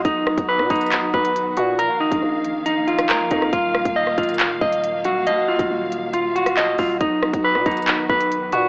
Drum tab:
HH |x-----x-----xxxxx-----x-x---x---|x-----x-----x---x---x-x-x---x---|x-----x-----xxxxx-----x-x---x---|x-----x-----x---x---x-x-x---o---|
CP |----------------x---------------|------------------------x-------|----------------x---------------|------------------------x-------|
SD |----r-----r---------------------|----------------------r-------r-|----r-----r---------------------|----------------------r---------|
BD |o-----o-----o-------o-----------|------o---------------------o---|o-----o-----o-------o-----------|------o---------------------o---|

HH |x-----x-----xxxxx-----x-x---x---|
CP |----------------x---------------|
SD |----r-----r---------------------|
BD |o-----o-----o-------o-----------|